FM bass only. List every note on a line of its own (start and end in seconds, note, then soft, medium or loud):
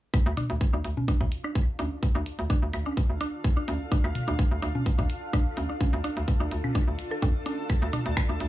0.26 0.35 D2 medium
0.50 0.58 D2 medium
0.73 0.82 D2 medium
0.84 0.94 D2 medium
1.21 1.29 D2 medium
1.79 1.89 D2 medium
2.15 2.24 D2 loud
2.39 2.48 D2 medium
2.62 2.71 D2 medium
2.74 2.83 D2 medium
3.10 3.18 D2 medium
3.68 3.78 D2 medium
4.04 4.13 D2 medium
4.28 4.36 D2 medium
4.51 4.60 D2 medium
4.63 4.72 D2 medium
4.99 5.07 D2 medium
5.57 5.67 D2 medium
5.93 6.02 D2 loud
6.17 6.25 D2 medium
6.40 6.49 D2 medium
6.51 6.61 D2 medium
6.88 6.96 D2 medium
7.22 7.32 F2 medium
7.82 7.91 D2 medium
8.06 8.14 D2 medium
8.29 8.38 D2 medium
8.40 8.48 D2 medium